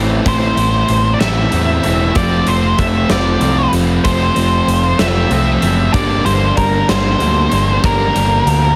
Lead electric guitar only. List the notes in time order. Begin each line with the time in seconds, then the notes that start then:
0.28 C5
1.14 D5
1.20 E5
2.17 D5
2.48 C5
2.79 E5
3.11 D5
4.04 C5
4.99 E5
5.94 D5
6.26 C5
6.57 A#4
6.90 C5
7.85 A#4